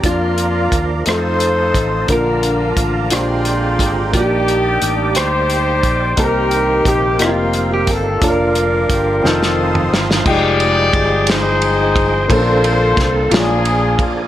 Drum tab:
CC |------------|------------|------------|------------|
RD |------------|------------|------------|------------|
HH |x-x-x-x-x-x-|x-x-x-x-x-x-|x-x-x-x-x-x-|x-x-x-x-x-x-|
SD |------r-----|------r-----|------r-----|------r-----|
T2 |------------|------------|------------|------------|
BD |o---o-----o-|o---o-----o-|o---------o-|o---o-----o-|

CC |------------|x-----------|------------|
RD |------------|--x-x-x-x-x-|x-x-x-x-x-x-|
HH |x-x-x-------|------------|------------|
SD |----r-oo--oo|------o-----|----o-o-----|
T2 |---------o--|------------|------------|
BD |o---o-------|o---o-----o-|o---o-----o-|